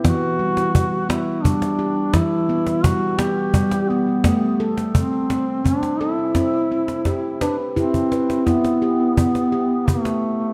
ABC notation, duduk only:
X:1
M:3/4
L:1/8
Q:1/4=85
K:Em
V:1 name="Duduk"
F3 E D2 | E2 F G2 B,- | B, z C2 D E- | E3 D C2 |
B,4 A,2 |]